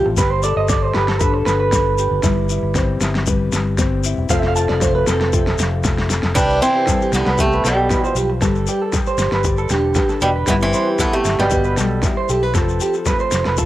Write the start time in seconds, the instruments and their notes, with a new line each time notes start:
Already playing: nylon-string guitar C3 F3 G3 E4 B4
0.06 fingered electric bass A1, muted clean electric guitar stroke
0.17 fingered electric bass G1, nylon-string guitar G4, clean electric guitar B4, muted nylon-string guitar stroke, kick, snare, shekere
0.31 clean electric guitar C5
0.43 nylon-string guitar A4, clean electric guitar D5, shekere
0.56 fingered electric bass G1, clean electric guitar D#5
0.69 clean electric guitar D5, kick, snare, shekere
0.83 clean electric guitar C5
0.94 fingered electric bass G1, nylon-string guitar G4, clean electric guitar B4, snare
1.08 clean electric guitar A4, snare
1.20 nylon-string guitar D3 A4, clean electric guitar B4, kick, shekere
1.34 muted clean electric guitar stroke
1.46 fingered electric bass G1, clean electric guitar B4, snare, shekere
1.60 clean electric guitar B4
1.72 nylon-string guitar D4, kick, snare, shekere
1.98 nylon-string guitar G4, shekere
2.11 fingered electric bass G1
2.23 fingered electric bass G1, nylon-string guitar G3 E4, kick, snare, shekere
2.49 nylon-string guitar E4, shekere
2.63 fingered electric bass G1
2.75 nylon-string guitar C4, kick, snare, shekere
3.01 fingered electric bass G1, nylon-string guitar E4, snare, shekere
3.15 snare
3.26 nylon-string guitar G3 B4, kick, shekere
3.52 fingered electric bass G1, snare, shekere
3.78 nylon-string guitar C4, kick, snare, shekere
4.04 nylon-string guitar E4, shekere
4.18 fingered electric bass E1
4.29 fingered electric bass F1, nylon-string guitar F3 A3 C4 F4 A4, clean electric guitar F5, kick, snare, shekere
4.39 clean electric guitar E5, snare
4.48 clean electric guitar F5
4.56 nylon-string guitar F4, clean electric guitar A5, shekere
4.69 fingered electric bass F1, clean electric guitar D5, snare
4.81 nylon-string guitar A3, clean electric guitar C5, kick, snare, shekere
4.95 clean electric guitar B4
5.07 fingered electric bass F1, nylon-string guitar C4, clean electric guitar A4, snare, shekere
5.21 clean electric guitar A4, snare
5.33 nylon-string guitar C3 F4, kick, shekere
5.47 snare
5.58 fingered electric bass F1, snare, shekere
5.84 nylon-string guitar A3, kick, snare, shekere
5.98 snare
6.10 snare, shekere
6.23 fingered electric bass F1, snare
6.35 fingered electric bass C2, nylon-string guitar C3 E4, steel-string acoustic guitar G3 D4, clean electric guitar B4, kick, snare, crash, shekere
6.50 shekere
6.61 steel-string acoustic guitar E3 C4, nylon-string guitar B4, clean electric guitar C5, shekere
6.75 clean electric guitar G4
6.87 nylon-string guitar G3, clean electric guitar A4, kick, snare, shekere
7.01 clean electric guitar G4, shekere
7.12 fingered electric bass C2, steel-string acoustic guitar D3 B3, snare, shekere
7.26 fingered electric bass C2, clean electric guitar B4, snare
7.38 steel-string acoustic guitar C3 A3, clean electric guitar G4, nylon-string guitar G4, kick, shekere
7.52 clean electric guitar B4, shekere
7.64 fingered electric bass B1, steel-string acoustic guitar B2 G3, clean electric guitar A4, snare, shekere
7.90 nylon-string guitar E3, clean electric guitar B4, kick, snare, shekere
8.04 clean electric guitar C5, shekere
8.15 fingered electric bass B1, nylon-string guitar F3, clean electric guitar G4, shekere
8.30 muted clean electric guitar stroke
8.41 fingered electric bass G1, nylon-string guitar G3 B4, clean electric guitar A4, kick, snare, shekere
8.55 shekere
8.67 clean electric guitar G4, nylon-string guitar D5, shekere
8.82 clean electric guitar A4
8.93 nylon-string guitar G4, kick, snare, shekere
9.06 clean electric guitar C5, shekere
9.18 fingered electric bass G1, snare, shekere
9.32 fingered electric bass G1, clean electric guitar B4, snare
9.44 nylon-string guitar D5, muted clean electric guitar stroke, kick, shekere
9.57 clean electric guitar A4, shekere
9.69 fingered electric bass E1, nylon-string guitar D3, clean electric guitar G4, snare, shekere
9.95 clean electric guitar G4, nylon-string guitar B4, kick, snare, shekere
10.09 clean electric guitar A4, snare, shekere
10.21 fingered electric bass E1, steel-string acoustic guitar B2 G3, clean electric guitar B4, nylon-string guitar D5, shekere
10.36 clean electric guitar B4
10.47 fingered electric bass G1, steel-string acoustic guitar E3 B3, nylon-string guitar G3, clean electric guitar B4, muted nylon-string guitar stroke, kick, snare, shekere
10.60 steel-string acoustic guitar E3 C4, shekere
10.73 nylon-string guitar B4, clean electric guitar C5, shekere
10.87 clean electric guitar G4
10.99 steel-string acoustic guitar E3 B3, clean electric guitar A4, kick, snare, shekere
11.13 steel-string acoustic guitar C3 A3, clean electric guitar G4, shekere
11.25 fingered electric bass G1, snare, shekere
11.39 fingered electric bass G1, steel-string acoustic guitar B2 G3, clean electric guitar B4, snare
11.50 clean electric guitar G4, nylon-string guitar B4, kick, shekere
11.64 clean electric guitar B4, shekere
11.77 fingered electric bass B1, nylon-string guitar G3, clean electric guitar A4, snare, shekere
12.03 nylon-string guitar E4, muted clean electric guitar stroke, kick, snare, shekere
12.17 clean electric guitar C5
12.29 fingered electric bass B1, clean electric guitar G4, nylon-string guitar A4, shekere
12.43 nylon-string guitar B4, clean electric guitar B4
12.54 fingered electric bass F1, nylon-string guitar F3 C4, clean electric guitar A4, kick, snare, shekere
12.69 shekere
12.80 clean electric guitar G4, nylon-string guitar A4, shekere
12.94 muted clean electric guitar stroke, shekere
13.06 nylon-string guitar A3, clean electric guitar B4, kick, snare, shekere
13.19 clean electric guitar C5, shekere
13.31 fingered electric bass F1, snare, shekere
13.45 fingered electric bass F1, clean electric guitar B4, snare
13.57 nylon-string guitar F4, clean electric guitar A4, kick, shekere